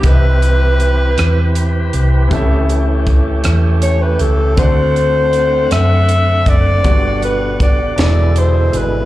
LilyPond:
<<
  \new Staff \with { instrumentName = "Alto saxophone" } { \time 6/8 \key c \lydian \tempo 4. = 53 b'2~ b'8 r8 | r2 cis''16 b'16 a'8 | c''4. e''4 d''8~ | d''8 b'8 d''8 d''8 c''8 b'8 | }
  \new Staff \with { instrumentName = "Grand piano" } { \time 6/8 \key c \lydian <c' e' g' b' ees'' e''>2. | <c' cis' e' g' a' e''>2. | <c' d' fis' a' d''>2. | <b d' fis' g' d''>4. <b, d' e' gis' d''>4. | }
  \new Staff \with { instrumentName = "Grand piano" } { \clef bass \time 6/8 \key c \lydian c4. r4. | cis4. r4. | d4. r4. | g,4. e4. | }
  \new Staff \with { instrumentName = "Tonewheel organ" } { \time 6/8 \key c \lydian << { g'2. | g'2. | fis''2.~ | fis''4. e'4. | } \\ { c'2. | cis'2. | c'2. | b,2. | } >> }
  \new Staff \with { instrumentName = "Tonewheel organ" } { \clef bass \time 6/8 \key c \lydian << { b'2. | a2.~ | a2. | g4. gis4. | } \\ { e2.~ | e2. | d2.~ | d4. d4. | } >> }
  \new Staff \with { instrumentName = "Fingered electric bass" } { \clef bass \time 6/8 \key c \lydian c,4. e,4 c,8 | cis,4. e,4 cis,8 | d,4. fis,4 fis,,8 | g,,4. e,,4 gis,,8 | }
  \new DrumStaff \with { instrumentName = "Drums" } \drummode { \time 6/8 <hh bd>8 hh8 hh8 <hh ss>8 hh8 hh8 | <hh bd>8 hh8 <hh bd>8 <hh ss>8 hh8 hh8 | <hh bd>8 hh8 hh8 <hh ss>8 hh8 <hh bd>8 | <hh bd>8 hh8 <hh bd>8 <hh sn>8 hh8 hh8 | }
>>